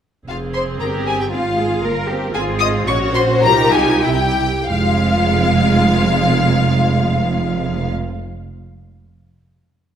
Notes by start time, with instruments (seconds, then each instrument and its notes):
0.27 double bass section F1, viola section C4 G#4, violin section F4 F5
0.54 violin section C5 C6
0.80 double bass section G1, cello section G4, violin section A#4 A#5
1.06 violin section G#4 G#5
1.20 violin section G4 G5
1.32 double bass section G#1, viola section C4 F4, cello section F4, violin section F4 F5
1.57 viola section G#3, cello section G#4
1.83 double bass section G1, viola section A#3 A#4, cello section A#4
2.08 viola section C4, cello section G4
2.34 double bass section G#1, viola section C4 G#4, cello section F4, violin section G#4 G#5
2.59 violin section D#5 D#6
2.87 double bass section A#1, viola section C#4 F#4, cello section F#4, violin section C#5 C#6
3.14 violin section C5 C6
3.42 double bass section C2, viola section D#4 F4, cello section G4, violin section A#4 A#5
3.72 violin section G#4 G#5
4.03 double bass section C2, viola section E4, cello section E4, violin section G4 G5
4.68 double bass section F1, cello section F2, viola section G#3 F4, violin section F5